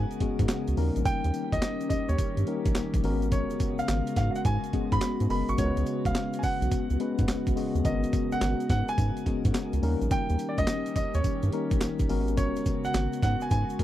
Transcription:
Already playing: C#3 G#3 B3 C#4 F#4 A#4 G#5
0.11 closed hi-hat, shaker
0.20 G#2 G#3 B3 C#4 F#4 G#4, kick, closed hi-hat
0.39 G#2, kick, closed hi-hat, shaker
0.49 snare, clap, closed hi-hat, tambourine, shaker
0.68 C#2, closed hi-hat, shaker
0.77 D#2 D#3 G3 A#3 C#4 D#4 G4 A#4, open hi-hat, tambourine
0.96 A#1, closed hi-hat, shaker
1.05 G5, kick, closed hi-hat, tambourine, shaker
1.24 D#2, closed hi-hat, shaker
1.34 closed hi-hat, tambourine, shaker
1.52 C#2 D#5, kick, closed hi-hat, shaker
1.62 snare, clap, closed hi-hat, tambourine, shaker
1.81 closed hi-hat, shaker
1.90 D#2 D#5, kick, closed hi-hat, tambourine, shaker
2.09 D#2 C#5, closed hi-hat, shaker
2.18 kick, closed hi-hat, tambourine, shaker
2.37 G2, closed hi-hat, shaker
2.47 G3 A#3 C#4 D#4 A#4, closed hi-hat
2.65 A#1, kick, closed hi-hat, shaker
2.75 A#1, snare, clap, closed hi-hat, tambourine, shaker
2.94 A#1, kick, closed hi-hat, shaker
3.03 G#1 C#3 G#3 B3 C#4 F#4 A#4, open hi-hat, tambourine
3.22 closed hi-hat, shaker
3.32 C#5, kick, closed hi-hat, tambourine, shaker
3.50 closed hi-hat, shaker
3.60 kick, closed hi-hat, tambourine, shaker
3.79 G#1 F5, closed hi-hat, shaker
3.88 G#1, snare, clap, closed hi-hat, tambourine, shaker
4.07 closed hi-hat, shaker
4.16 G#2 F5, kick, snare, closed hi-hat, tambourine, shaker
4.31 F5
4.35 F#5, closed hi-hat, shaker
4.45 G#2 G#5, kick, closed hi-hat, tambourine, shaker
4.64 closed hi-hat, shaker
4.73 G#2 G#3 B3 C#4 F#4 G#4, kick, closed hi-hat
4.92 G#2 B5, kick, closed hi-hat, shaker
5.01 snare, clap, closed hi-hat, tambourine, shaker
5.20 G#2, closed hi-hat, shaker
5.30 F#1 G#3 B3 C#4 F#4 A#4 B5, open hi-hat, tambourine
5.49 G#1 C#6, closed hi-hat, shaker
5.58 C#2 G#3 B3 C#4 F#4 A#4 C#5, kick, closed hi-hat, tambourine, shaker
5.66 B4
5.77 C#2, closed hi-hat, shaker
5.86 closed hi-hat, tambourine, shaker
6.05 C#2 F5, kick, closed hi-hat, shaker
6.15 snare, clap, closed hi-hat, tambourine, shaker
6.33 closed hi-hat, shaker
6.39 G#5
6.43 B1 F#5, kick, open hi-hat, tambourine, shaker
6.61 B1, closed hi-hat, shaker
6.71 kick, closed hi-hat, tambourine, shaker
6.90 C#2, closed hi-hat, shaker
7.00 G#3 B3 C#4 F#4 B4, closed hi-hat
7.18 G#2, kick, closed hi-hat, shaker
7.28 B1, snare, clap, closed hi-hat, tambourine, shaker
7.47 B1, kick, closed hi-hat, shaker
7.56 G#3 B3 C#4 F#4 G#4, open hi-hat, tambourine
7.75 D#2, closed hi-hat, shaker
7.84 G#1 G#3 B3 C#4 F#4 A#4 D#5, kick, closed hi-hat, tambourine, shaker
8.03 closed hi-hat, shaker
8.13 kick, closed hi-hat, tambourine, shaker
8.32 G#1 F#5, closed hi-hat, shaker
8.41 G#1, snare, clap, closed hi-hat, tambourine, shaker
8.60 closed hi-hat, shaker
8.70 G#2 F#5, kick, snare, closed hi-hat, tambourine, shaker
8.88 G#5, closed hi-hat, shaker
8.98 G#2, kick, closed hi-hat, tambourine, shaker
9.17 closed hi-hat, shaker
9.26 G#2 G#3 B3 C#4 F#4 G#4, kick, closed hi-hat
9.45 G#2, kick, closed hi-hat, shaker
9.54 snare, clap, closed hi-hat, tambourine, shaker
9.73 C#2, closed hi-hat, shaker
9.82 D#2 D#3 G3 A#3 C#4 D#4 G4 A#4, open hi-hat, tambourine
10.02 A#1, closed hi-hat, shaker
10.11 G5, kick, closed hi-hat, tambourine, shaker
10.29 D#2, closed hi-hat, shaker
10.39 closed hi-hat, tambourine, shaker
10.49 D5
10.58 C#2 D#5, kick, closed hi-hat, shaker
10.67 snare, clap, closed hi-hat, tambourine, shaker
10.86 closed hi-hat, shaker
10.96 D#2 D#5, kick, closed hi-hat, tambourine, shaker
11.14 D#2 C#5, closed hi-hat, shaker
11.24 kick, closed hi-hat, tambourine, shaker
11.43 G2, closed hi-hat, shaker
11.52 G3 A#3 C#4 D#4 A#4, closed hi-hat
11.71 A#1, kick, closed hi-hat, shaker
11.81 A#1, snare, clap, closed hi-hat, tambourine, shaker
11.99 A#1, kick, closed hi-hat, shaker
12.09 G#1 C#3 G#3 B3 C#4 F#4 A#4, open hi-hat, tambourine
12.28 closed hi-hat, shaker
12.37 C#5, kick, closed hi-hat, tambourine, shaker
12.56 closed hi-hat, shaker
12.65 kick, closed hi-hat, tambourine, shaker
12.84 G#1 F#5, closed hi-hat, shaker
12.94 G#1, snare, clap, closed hi-hat, tambourine, shaker
13.13 closed hi-hat, shaker
13.22 G#2 F#5, kick, snare, closed hi-hat, tambourine, shaker
13.41 G#5, closed hi-hat, shaker
13.50 G#2 G#5, kick, closed hi-hat, tambourine, shaker
13.69 closed hi-hat, shaker
13.79 G#2 G#3 B3 C#4 F#4 A#4, kick, closed hi-hat

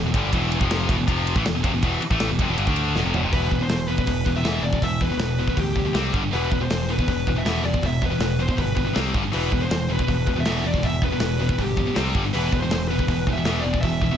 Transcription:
0.04 E1 E2 B2
0.14 G1 G2 D3 G3, kick, ride
0.32 E1 E2 B2 E3, kick, ride
0.52 ride
0.60 F1 F2 C3 F3, kick
0.71 snare, ride
0.89 E1 E2 B2, kick, ride
0.98 E1 E2 B2
1.07 F1 F2 C3 F3, kick, ride
1.27 ride
1.36 A1 A2 E3, kick
1.45 E1 E2 B2, snare, ride
1.54 E1 E2 B2
1.63 F1 F2 C3, kick, ride
1.72 E1 E2 B2
1.83 E1 E2 B2 E3, kick, ride
2.00 muted picked electric bass stroke, muted distorted electric guitar stroke, ride
2.10 A1 A2 E3 A3, kick
2.20 snare, ride
2.28 E1 E2 B2
2.39 F1 F2 C3, kick, ride
2.48 E1 E2 B2
2.57 G1 G2 D3, ride
2.67 D2 D3 A3 D4, kick
2.76 ride
2.95 E1 E2 B2, snare
3.04 F1 F2 C3
3.14 E1 E2 B2, floor tom
3.23 F1 F2 C3
3.33 E1 E2 B2 E3 B4, kick, open hi-hat
3.51 E1 E2 B2, kick
3.61 E2 B2 C5
3.69 E1 E2 B2, snare, open hi-hat
3.88 E2 B2 B4
3.98 E2 B2, kick
4.07 E1 E2 B2, kick, open hi-hat
4.26 E1 E2 B2, kick
4.36 E2 B2 E5
4.44 E1 E2 B2 E3, snare, open hi-hat
4.62 E1 E2 B2 D5
4.73 E2 B2, kick
4.82 E1 E2 B2 E5, kick, open hi-hat
5.01 E2 B2 B4, kick
5.12 E2 B2
5.17 E1 E2, snare, open hi-hat
5.22 B2
5.39 E2 B2 B4
5.47 E2 B2, kick
5.56 D2 E2 B2 G4, kick, open hi-hat
5.75 E2 B2, kick
5.85 E2 B2
5.93 C2 C3 G3 C4, snare, open hi-hat
6.13 G1 G2 D3 G3, kick
6.23 G2 D3
6.32 E1 E2 B2 E3 B4, open hi-hat
6.51 E1 E2 B2, kick
6.61 E2 B2 C5
6.70 E1 E2 B2, snare, open hi-hat
6.90 E2 B2 B4
6.99 E2 B2, kick
7.08 E1 E2 B2, kick, open hi-hat
7.27 E1 E2 B2, kick
7.36 E2 B2 E5
7.45 E1 E2 B2 E3, snare, open hi-hat
7.63 E1 E2 B2 D5
7.74 E2 B2, kick
7.82 E1 E2 B2 E5, kick, open hi-hat
8.02 E2 B2 B4, kick
8.10 E2 B2
8.19 E1 E2 B2, snare, open hi-hat
8.39 E2 B2 C5
8.48 E2 B2, kick
8.57 G1 E2 B2 B4, kick, open hi-hat
8.75 E2 B2, kick
8.85 E2 B2
8.93 C2 C3 G3 C4, snare, open hi-hat
9.14 G1 G2 D3 G3, kick
9.24 G2 D3
9.32 E1 E2 B2 E3 B4, open hi-hat
9.52 E1 E2 B2, kick
9.60 E2 B2 C5
9.70 E1 E2 B2, snare, open hi-hat
9.90 E2 B2 B4
9.99 E2 B2, kick
10.08 E1 E2 B2, kick, open hi-hat
10.27 E1 E2 B2, kick
10.36 E2 B2 E5
10.45 E1 E2 B2 E3, snare, open hi-hat
10.64 E1 E2 B2 D5
10.74 E2 B2, kick
10.83 E1 E2 B2 E5, kick, open hi-hat
11.02 E2 B2 B4, kick
11.12 E2 B2
11.20 E1 E2 B2, snare, open hi-hat
11.40 E2 B2 B4
11.49 E2 B2, kick
11.58 G1 E2 B2 G4, kick, open hi-hat
11.77 E2 B2, kick
11.86 E2 B2
11.95 C2 C3 G3 C4, snare, open hi-hat
12.14 G1 G2 D3 G3, kick
12.25 G2 D3
12.34 E1 E2 B2 E3 B4, open hi-hat
12.52 E1 E2 B2, kick
12.60 E2 B2 C5
12.71 E1 E2 B2, snare, open hi-hat
12.88 E2 B2 B4
12.99 E2 B2, kick
13.08 E1 E2 B2, kick, open hi-hat
13.27 E1 E2 B2, kick
13.33 E5
13.37 E2 B2
13.45 E1 E2 B2 E3, snare, open hi-hat
13.61 E1 E2 B2 D5
13.73 E2 B2, kick
13.81 E1 E2 B2 E5, kick, open hi-hat
14.02 E2 B2, kick
14.12 E2 B2

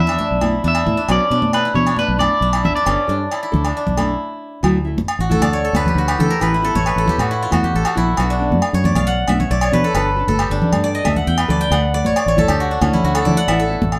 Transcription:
Already playing: E2 E4
0.00 B3 E5
0.07 D4, low agogo
0.18 D4, high conga
0.31 B1
0.41 B3 E4, high conga, low agogo
0.64 E2 D4 E5
0.75 E4, low agogo
0.86 A2 B3 E4, high conga, low conga
0.97 D4
1.08 B1 F#3 B3 C#4 D4 D5, low agogo
1.30 B2 B3 D4
1.42 high conga
1.53 E4 B4, low agogo
1.65 E4
1.74 B2 B3 D4 C#5, low conga
1.87 D4, low agogo
1.97 D4 B4, high conga
2.08 B1
2.19 B3 D4 E4 D5, high conga, low agogo
2.41 B1 D4
2.53 E4, low agogo
2.63 A1 B3 D4 E5, high conga, low conga
2.76 D4 D5
2.86 G1 B3 C#4 D4 A4, low agogo
3.08 G2 D4 A4
3.32 E4, low agogo
3.43 E4
3.52 D2 D4 A4, low conga
3.65 D4, low agogo
3.77 D4
3.87 B1, low conga
3.97 D4 E4 A4, high conga, low agogo
4.63 D2 F#3 A3 E4, low agogo
4.85 A3 E4
4.97 A1, high conga
5.08 low agogo
5.19 A1 F#4
5.30 A3 E4 A4, high conga, low conga
5.41 D2 D5, high conga, low agogo
5.53 C#5
5.65 A4
5.73 D2 A3 B4, high conga, low agogo
5.86 G4, low conga
5.95 D2 F#4
6.08 G4, low agogo
6.18 D3 A3 E4 A4, low conga
6.30 A#4
6.40 A1 E3 B3 E4 B4, low agogo
6.54 E4
6.62 B3 E4 A4
6.75 A1 C#5, high conga
6.86 B4, low agogo
6.96 A1 A4
7.06 B3 E4 G4, low conga
7.18 A2 F#4, high conga, low agogo
7.31 E4
7.42 F4
7.51 E2 B3 E4 F#4, high conga, low agogo
7.63 G4, low conga
7.74 A1 A4
7.85 F#4, low agogo
7.95 A#1 B3 E4
8.17 B1 B3 D4 F#4, muted nylon-string guitar stroke, low agogo
8.30 D4
8.39 B3 D4
8.51 F#2, high conga
8.62 low agogo
8.73 F#2 C#5
8.83 B3 D4 D5, high conga, low conga
8.95 B1 F5, high conga, low agogo
9.07 F#5
9.28 B1 B3 D4 E5, high conga, low agogo
9.40 C#5, low conga
9.50 B1 D5
9.61 C#5, low agogo
9.72 B2 B3 D4 B4, low conga
9.84 A4
9.94 G1 D4 A4 B4, muted nylon-string guitar stroke, low agogo
10.16 D4 A4
10.27 G1 A4, high conga
10.39 G4, low agogo
10.50 G1 D4
10.62 D4, low conga
10.72 G2, high conga, low agogo
10.84 D5
10.95 D#5
11.05 D2 D4 A4 E5, high conga, low agogo
11.16 F#5, low conga
11.27 E2 G5
11.38 B4, low agogo
11.48 D2 D4 A4 D5, low conga
11.61 G5
11.71 D2 A3 F#5, muted nylon-string guitar stroke, low agogo
11.94 A3 D5
12.04 A1 C#5, high conga
12.16 D5, low agogo
12.26 A1 C#5
12.37 A3 E4 A4, high conga, low conga
12.48 D2 G4, high conga, low agogo
12.60 F#4
12.71 D4
12.81 D2 A3 C#4 E4, high conga, low agogo
12.93 E4, low conga
13.04 D2 F#4
13.15 A4, low agogo
13.25 D3 E4 D5, low conga
13.30 A3
13.37 F#5
13.47 A1 E3 B3 E4 E5, low agogo
13.59 A4
13.70 B3 E4
13.82 A1, high conga
13.92 low agogo

